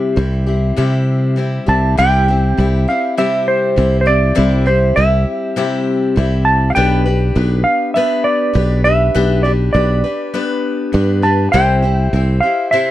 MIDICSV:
0, 0, Header, 1, 4, 480
1, 0, Start_track
1, 0, Key_signature, 0, "major"
1, 0, Tempo, 597015
1, 1592, Time_signature, 4, 2, 24, 8
1, 10379, End_track
2, 0, Start_track
2, 0, Title_t, "Electric slide guitar"
2, 0, Program_c, 0, 29
2, 0, Note_on_c, 0, 72, 77
2, 1085, Note_off_c, 0, 72, 0
2, 1358, Note_on_c, 0, 81, 94
2, 1579, Note_off_c, 0, 81, 0
2, 1597, Note_on_c, 0, 79, 116
2, 2321, Note_on_c, 0, 77, 86
2, 2338, Note_off_c, 0, 79, 0
2, 2541, Note_off_c, 0, 77, 0
2, 2560, Note_on_c, 0, 76, 95
2, 2781, Note_off_c, 0, 76, 0
2, 2797, Note_on_c, 0, 72, 98
2, 3215, Note_off_c, 0, 72, 0
2, 3224, Note_on_c, 0, 72, 74
2, 3272, Note_on_c, 0, 74, 101
2, 3278, Note_off_c, 0, 72, 0
2, 3753, Note_on_c, 0, 72, 87
2, 3769, Note_off_c, 0, 74, 0
2, 3987, Note_on_c, 0, 76, 102
2, 4002, Note_off_c, 0, 72, 0
2, 5185, Note_on_c, 0, 81, 106
2, 5229, Note_off_c, 0, 76, 0
2, 5381, Note_off_c, 0, 81, 0
2, 5388, Note_on_c, 0, 77, 92
2, 5423, Note_off_c, 0, 77, 0
2, 5426, Note_on_c, 0, 79, 98
2, 6138, Note_off_c, 0, 79, 0
2, 6141, Note_on_c, 0, 77, 105
2, 6382, Note_off_c, 0, 77, 0
2, 6385, Note_on_c, 0, 76, 93
2, 6626, Note_on_c, 0, 74, 97
2, 6639, Note_off_c, 0, 76, 0
2, 7079, Note_off_c, 0, 74, 0
2, 7110, Note_on_c, 0, 76, 106
2, 7582, Note_on_c, 0, 74, 95
2, 7608, Note_off_c, 0, 76, 0
2, 7648, Note_off_c, 0, 74, 0
2, 7820, Note_on_c, 0, 74, 97
2, 9032, Note_on_c, 0, 81, 85
2, 9062, Note_off_c, 0, 74, 0
2, 9258, Note_off_c, 0, 81, 0
2, 9261, Note_on_c, 0, 79, 101
2, 9971, Note_off_c, 0, 79, 0
2, 9974, Note_on_c, 0, 77, 93
2, 10217, Note_off_c, 0, 77, 0
2, 10220, Note_on_c, 0, 76, 97
2, 10379, Note_off_c, 0, 76, 0
2, 10379, End_track
3, 0, Start_track
3, 0, Title_t, "Steel-string acoustic guitar"
3, 0, Program_c, 1, 25
3, 0, Note_on_c, 1, 48, 99
3, 0, Note_on_c, 1, 55, 90
3, 0, Note_on_c, 1, 60, 91
3, 0, Note_on_c, 1, 64, 92
3, 0, Note_on_c, 1, 67, 104
3, 120, Note_off_c, 1, 55, 0
3, 127, Note_off_c, 1, 60, 0
3, 130, Note_on_c, 1, 55, 60
3, 134, Note_off_c, 1, 64, 0
3, 137, Note_off_c, 1, 48, 0
3, 137, Note_on_c, 1, 60, 53
3, 139, Note_off_c, 1, 67, 0
3, 143, Note_on_c, 1, 64, 62
3, 149, Note_on_c, 1, 67, 68
3, 363, Note_off_c, 1, 67, 0
3, 371, Note_off_c, 1, 64, 0
3, 373, Note_on_c, 1, 67, 46
3, 379, Note_off_c, 1, 55, 0
3, 380, Note_off_c, 1, 60, 0
3, 381, Note_on_c, 1, 64, 38
3, 389, Note_on_c, 1, 60, 38
3, 613, Note_off_c, 1, 60, 0
3, 615, Note_on_c, 1, 48, 78
3, 616, Note_off_c, 1, 64, 0
3, 618, Note_off_c, 1, 67, 0
3, 621, Note_on_c, 1, 55, 82
3, 623, Note_on_c, 1, 60, 92
3, 625, Note_on_c, 1, 64, 82
3, 627, Note_on_c, 1, 67, 86
3, 1083, Note_off_c, 1, 55, 0
3, 1093, Note_off_c, 1, 60, 0
3, 1093, Note_on_c, 1, 55, 53
3, 1099, Note_off_c, 1, 64, 0
3, 1103, Note_off_c, 1, 48, 0
3, 1103, Note_on_c, 1, 60, 57
3, 1106, Note_off_c, 1, 67, 0
3, 1108, Note_on_c, 1, 64, 66
3, 1116, Note_on_c, 1, 67, 63
3, 1329, Note_off_c, 1, 67, 0
3, 1338, Note_on_c, 1, 67, 56
3, 1339, Note_off_c, 1, 64, 0
3, 1342, Note_off_c, 1, 55, 0
3, 1347, Note_off_c, 1, 60, 0
3, 1349, Note_on_c, 1, 64, 51
3, 1358, Note_on_c, 1, 60, 48
3, 1585, Note_off_c, 1, 67, 0
3, 1586, Note_off_c, 1, 60, 0
3, 1587, Note_on_c, 1, 48, 83
3, 1591, Note_off_c, 1, 64, 0
3, 1591, Note_on_c, 1, 55, 88
3, 1595, Note_on_c, 1, 60, 92
3, 1599, Note_on_c, 1, 64, 95
3, 1599, Note_on_c, 1, 67, 105
3, 1825, Note_off_c, 1, 67, 0
3, 1830, Note_off_c, 1, 48, 0
3, 1830, Note_off_c, 1, 64, 0
3, 1832, Note_off_c, 1, 55, 0
3, 1834, Note_off_c, 1, 60, 0
3, 1834, Note_on_c, 1, 67, 51
3, 1840, Note_on_c, 1, 64, 48
3, 1850, Note_on_c, 1, 60, 50
3, 2068, Note_off_c, 1, 60, 0
3, 2069, Note_on_c, 1, 55, 57
3, 2072, Note_off_c, 1, 64, 0
3, 2074, Note_off_c, 1, 67, 0
3, 2078, Note_on_c, 1, 60, 56
3, 2082, Note_on_c, 1, 64, 52
3, 2090, Note_on_c, 1, 67, 69
3, 2304, Note_off_c, 1, 67, 0
3, 2312, Note_off_c, 1, 55, 0
3, 2314, Note_on_c, 1, 67, 46
3, 2316, Note_off_c, 1, 60, 0
3, 2318, Note_off_c, 1, 64, 0
3, 2328, Note_on_c, 1, 64, 43
3, 2333, Note_on_c, 1, 60, 35
3, 2547, Note_off_c, 1, 60, 0
3, 2551, Note_off_c, 1, 67, 0
3, 2552, Note_on_c, 1, 48, 81
3, 2553, Note_off_c, 1, 64, 0
3, 2556, Note_on_c, 1, 55, 77
3, 2556, Note_on_c, 1, 60, 79
3, 2560, Note_on_c, 1, 67, 88
3, 2563, Note_on_c, 1, 64, 79
3, 3022, Note_off_c, 1, 55, 0
3, 3024, Note_off_c, 1, 60, 0
3, 3025, Note_on_c, 1, 55, 57
3, 3028, Note_off_c, 1, 64, 0
3, 3034, Note_off_c, 1, 48, 0
3, 3034, Note_on_c, 1, 60, 61
3, 3038, Note_on_c, 1, 64, 59
3, 3042, Note_off_c, 1, 67, 0
3, 3045, Note_on_c, 1, 67, 64
3, 3252, Note_off_c, 1, 67, 0
3, 3259, Note_off_c, 1, 64, 0
3, 3262, Note_on_c, 1, 67, 55
3, 3267, Note_off_c, 1, 60, 0
3, 3269, Note_on_c, 1, 64, 43
3, 3271, Note_off_c, 1, 55, 0
3, 3277, Note_on_c, 1, 60, 45
3, 3491, Note_off_c, 1, 60, 0
3, 3497, Note_off_c, 1, 64, 0
3, 3497, Note_on_c, 1, 48, 88
3, 3498, Note_off_c, 1, 67, 0
3, 3501, Note_on_c, 1, 60, 98
3, 3502, Note_on_c, 1, 55, 94
3, 3506, Note_on_c, 1, 64, 94
3, 3508, Note_on_c, 1, 67, 96
3, 3734, Note_off_c, 1, 67, 0
3, 3743, Note_on_c, 1, 67, 53
3, 3744, Note_off_c, 1, 64, 0
3, 3747, Note_off_c, 1, 48, 0
3, 3749, Note_off_c, 1, 55, 0
3, 3749, Note_off_c, 1, 60, 0
3, 3753, Note_on_c, 1, 64, 53
3, 3760, Note_on_c, 1, 60, 44
3, 3986, Note_off_c, 1, 60, 0
3, 3989, Note_on_c, 1, 55, 54
3, 3990, Note_off_c, 1, 67, 0
3, 3992, Note_off_c, 1, 64, 0
3, 3996, Note_on_c, 1, 60, 62
3, 4001, Note_on_c, 1, 64, 61
3, 4005, Note_on_c, 1, 67, 64
3, 4467, Note_off_c, 1, 60, 0
3, 4469, Note_off_c, 1, 55, 0
3, 4471, Note_on_c, 1, 48, 77
3, 4472, Note_off_c, 1, 64, 0
3, 4472, Note_on_c, 1, 55, 78
3, 4477, Note_on_c, 1, 60, 97
3, 4481, Note_off_c, 1, 67, 0
3, 4481, Note_on_c, 1, 64, 93
3, 4484, Note_on_c, 1, 67, 95
3, 4948, Note_off_c, 1, 55, 0
3, 4952, Note_on_c, 1, 55, 63
3, 4954, Note_off_c, 1, 48, 0
3, 4955, Note_off_c, 1, 60, 0
3, 4957, Note_off_c, 1, 64, 0
3, 4964, Note_on_c, 1, 60, 61
3, 4966, Note_on_c, 1, 64, 74
3, 4968, Note_off_c, 1, 67, 0
3, 4971, Note_on_c, 1, 67, 68
3, 5428, Note_off_c, 1, 55, 0
3, 5431, Note_on_c, 1, 59, 94
3, 5434, Note_off_c, 1, 60, 0
3, 5436, Note_off_c, 1, 64, 0
3, 5437, Note_on_c, 1, 62, 98
3, 5439, Note_off_c, 1, 67, 0
3, 5439, Note_on_c, 1, 67, 99
3, 5445, Note_on_c, 1, 71, 103
3, 5663, Note_off_c, 1, 71, 0
3, 5672, Note_off_c, 1, 67, 0
3, 5673, Note_on_c, 1, 71, 57
3, 5674, Note_off_c, 1, 59, 0
3, 5677, Note_off_c, 1, 62, 0
3, 5682, Note_on_c, 1, 67, 50
3, 5689, Note_on_c, 1, 62, 47
3, 5910, Note_off_c, 1, 62, 0
3, 5913, Note_on_c, 1, 59, 58
3, 5915, Note_off_c, 1, 71, 0
3, 5916, Note_off_c, 1, 67, 0
3, 5920, Note_on_c, 1, 62, 63
3, 5926, Note_on_c, 1, 67, 61
3, 5930, Note_on_c, 1, 71, 60
3, 6387, Note_off_c, 1, 59, 0
3, 6392, Note_off_c, 1, 62, 0
3, 6397, Note_off_c, 1, 71, 0
3, 6397, Note_on_c, 1, 59, 81
3, 6402, Note_on_c, 1, 62, 82
3, 6404, Note_off_c, 1, 67, 0
3, 6407, Note_on_c, 1, 67, 83
3, 6407, Note_on_c, 1, 71, 98
3, 6852, Note_off_c, 1, 59, 0
3, 6860, Note_off_c, 1, 62, 0
3, 6862, Note_on_c, 1, 59, 58
3, 6870, Note_on_c, 1, 62, 55
3, 6871, Note_off_c, 1, 67, 0
3, 6871, Note_off_c, 1, 71, 0
3, 6874, Note_on_c, 1, 67, 60
3, 6880, Note_on_c, 1, 71, 69
3, 7105, Note_off_c, 1, 71, 0
3, 7110, Note_off_c, 1, 59, 0
3, 7112, Note_off_c, 1, 67, 0
3, 7113, Note_off_c, 1, 62, 0
3, 7115, Note_on_c, 1, 71, 57
3, 7121, Note_on_c, 1, 67, 48
3, 7129, Note_on_c, 1, 62, 46
3, 7350, Note_off_c, 1, 62, 0
3, 7352, Note_off_c, 1, 71, 0
3, 7353, Note_on_c, 1, 59, 91
3, 7354, Note_off_c, 1, 67, 0
3, 7359, Note_on_c, 1, 62, 102
3, 7362, Note_on_c, 1, 71, 88
3, 7363, Note_on_c, 1, 67, 105
3, 7582, Note_off_c, 1, 71, 0
3, 7589, Note_off_c, 1, 67, 0
3, 7591, Note_on_c, 1, 71, 57
3, 7593, Note_off_c, 1, 62, 0
3, 7595, Note_off_c, 1, 59, 0
3, 7598, Note_on_c, 1, 67, 51
3, 7602, Note_on_c, 1, 62, 51
3, 7829, Note_on_c, 1, 59, 51
3, 7832, Note_off_c, 1, 62, 0
3, 7834, Note_off_c, 1, 71, 0
3, 7835, Note_off_c, 1, 67, 0
3, 7841, Note_on_c, 1, 62, 57
3, 7844, Note_on_c, 1, 67, 57
3, 7848, Note_on_c, 1, 71, 59
3, 8061, Note_off_c, 1, 71, 0
3, 8068, Note_off_c, 1, 67, 0
3, 8070, Note_on_c, 1, 71, 51
3, 8073, Note_off_c, 1, 59, 0
3, 8078, Note_on_c, 1, 67, 40
3, 8079, Note_off_c, 1, 62, 0
3, 8087, Note_on_c, 1, 62, 34
3, 8305, Note_off_c, 1, 62, 0
3, 8310, Note_on_c, 1, 59, 70
3, 8311, Note_off_c, 1, 67, 0
3, 8313, Note_off_c, 1, 71, 0
3, 8314, Note_on_c, 1, 62, 87
3, 8321, Note_on_c, 1, 67, 73
3, 8323, Note_on_c, 1, 71, 93
3, 8775, Note_off_c, 1, 59, 0
3, 8783, Note_off_c, 1, 62, 0
3, 8785, Note_on_c, 1, 59, 62
3, 8793, Note_on_c, 1, 62, 76
3, 8794, Note_off_c, 1, 71, 0
3, 8797, Note_off_c, 1, 67, 0
3, 8800, Note_on_c, 1, 67, 64
3, 8804, Note_on_c, 1, 71, 59
3, 9015, Note_off_c, 1, 71, 0
3, 9024, Note_off_c, 1, 67, 0
3, 9025, Note_on_c, 1, 71, 47
3, 9029, Note_off_c, 1, 59, 0
3, 9029, Note_off_c, 1, 62, 0
3, 9034, Note_on_c, 1, 67, 44
3, 9038, Note_on_c, 1, 62, 43
3, 9268, Note_off_c, 1, 71, 0
3, 9270, Note_off_c, 1, 67, 0
3, 9271, Note_on_c, 1, 48, 89
3, 9274, Note_off_c, 1, 62, 0
3, 9274, Note_on_c, 1, 60, 93
3, 9277, Note_on_c, 1, 64, 96
3, 9279, Note_on_c, 1, 67, 94
3, 9283, Note_on_c, 1, 72, 106
3, 9497, Note_off_c, 1, 72, 0
3, 9506, Note_on_c, 1, 72, 55
3, 9507, Note_off_c, 1, 67, 0
3, 9511, Note_off_c, 1, 48, 0
3, 9513, Note_off_c, 1, 60, 0
3, 9514, Note_off_c, 1, 64, 0
3, 9517, Note_on_c, 1, 67, 52
3, 9526, Note_on_c, 1, 64, 47
3, 9748, Note_off_c, 1, 72, 0
3, 9753, Note_off_c, 1, 67, 0
3, 9755, Note_off_c, 1, 64, 0
3, 9756, Note_on_c, 1, 60, 59
3, 9764, Note_on_c, 1, 64, 52
3, 9769, Note_on_c, 1, 67, 60
3, 9775, Note_on_c, 1, 72, 59
3, 9982, Note_off_c, 1, 72, 0
3, 9991, Note_off_c, 1, 67, 0
3, 9992, Note_on_c, 1, 72, 42
3, 9993, Note_off_c, 1, 60, 0
3, 9997, Note_off_c, 1, 64, 0
3, 10001, Note_on_c, 1, 67, 41
3, 10013, Note_on_c, 1, 64, 39
3, 10228, Note_off_c, 1, 64, 0
3, 10229, Note_off_c, 1, 67, 0
3, 10230, Note_off_c, 1, 72, 0
3, 10231, Note_on_c, 1, 48, 76
3, 10233, Note_on_c, 1, 60, 80
3, 10238, Note_on_c, 1, 64, 87
3, 10239, Note_on_c, 1, 67, 82
3, 10240, Note_on_c, 1, 72, 87
3, 10379, Note_off_c, 1, 48, 0
3, 10379, Note_off_c, 1, 60, 0
3, 10379, Note_off_c, 1, 64, 0
3, 10379, Note_off_c, 1, 67, 0
3, 10379, Note_off_c, 1, 72, 0
3, 10379, End_track
4, 0, Start_track
4, 0, Title_t, "Fingered electric bass"
4, 0, Program_c, 2, 33
4, 137, Note_on_c, 2, 36, 101
4, 572, Note_off_c, 2, 36, 0
4, 627, Note_on_c, 2, 48, 83
4, 1274, Note_off_c, 2, 48, 0
4, 1351, Note_on_c, 2, 36, 87
4, 1566, Note_off_c, 2, 36, 0
4, 1597, Note_on_c, 2, 36, 96
4, 2025, Note_off_c, 2, 36, 0
4, 2077, Note_on_c, 2, 36, 99
4, 2290, Note_off_c, 2, 36, 0
4, 3035, Note_on_c, 2, 36, 100
4, 3465, Note_off_c, 2, 36, 0
4, 3520, Note_on_c, 2, 36, 102
4, 3948, Note_off_c, 2, 36, 0
4, 3998, Note_on_c, 2, 36, 99
4, 4212, Note_off_c, 2, 36, 0
4, 4963, Note_on_c, 2, 36, 100
4, 5389, Note_off_c, 2, 36, 0
4, 5444, Note_on_c, 2, 35, 99
4, 5870, Note_off_c, 2, 35, 0
4, 5917, Note_on_c, 2, 35, 102
4, 6132, Note_off_c, 2, 35, 0
4, 6875, Note_on_c, 2, 35, 104
4, 7305, Note_off_c, 2, 35, 0
4, 7361, Note_on_c, 2, 35, 88
4, 7788, Note_off_c, 2, 35, 0
4, 7835, Note_on_c, 2, 35, 107
4, 8050, Note_off_c, 2, 35, 0
4, 8796, Note_on_c, 2, 43, 98
4, 9223, Note_off_c, 2, 43, 0
4, 9278, Note_on_c, 2, 36, 103
4, 9703, Note_off_c, 2, 36, 0
4, 9752, Note_on_c, 2, 36, 100
4, 9965, Note_off_c, 2, 36, 0
4, 10379, End_track
0, 0, End_of_file